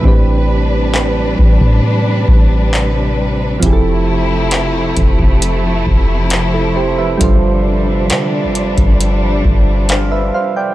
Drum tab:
HH |----------------|x---x-x-x---x---|x---x-xxx---x---|
CP |----x-------x---|----x-------x---|----x-------x---|
BD |o-----oo--o-----|o-----oo--o-----|o------o--o-----|